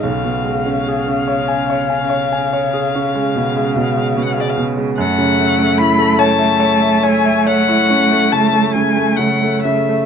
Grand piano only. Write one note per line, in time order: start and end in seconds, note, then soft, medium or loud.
0.03 4.93 B1 medium
0.24 0.58 B2 soft
0.45 0.79 G#3 soft
0.66 1.00 C#4 soft
0.88 1.21 G#4 soft
1.07 1.41 C#4 soft
1.28 1.61 C#5 soft
1.48 1.82 G#5 soft
1.70 2.04 C#5 medium
1.90 2.24 G#5 soft
2.10 2.45 C#5 medium
2.32 2.66 G#5 medium
2.53 2.87 C#5 medium
2.73 3.08 G#4 soft
2.95 3.29 C#4 soft
3.15 3.49 G#3 soft
3.36 3.69 B2 soft
3.57 3.89 G#3 soft
3.76 4.08 B2 medium
3.97 4.29 G#3 soft
4.17 4.49 B2 medium
4.37 4.70 G#3 medium
4.58 4.90 B2 medium
4.77 4.97 G#3 medium
4.98 10.06 F#2 medium
5.18 5.50 C#3 medium
5.39 5.71 A3 medium
5.59 5.91 C#4 medium
5.79 6.11 E4 medium
5.99 6.31 A4 medium
6.19 6.52 C#5 medium
6.39 6.73 E5 medium
6.60 6.94 C#5 medium
6.81 7.16 E5 medium
7.04 7.38 C#5 medium
7.25 7.59 E5 medium
7.46 7.81 C#5 medium
7.68 8.03 E4 medium
7.90 8.24 C#4 medium
8.11 8.45 A3 medium
8.32 8.66 C#3 soft
8.53 8.87 A3 medium
8.76 9.10 C#3 medium
8.97 9.32 A3 soft
9.19 9.55 C#3 medium
9.42 9.79 A3 soft
9.65 10.02 C#3 soft
9.89 10.06 A3 soft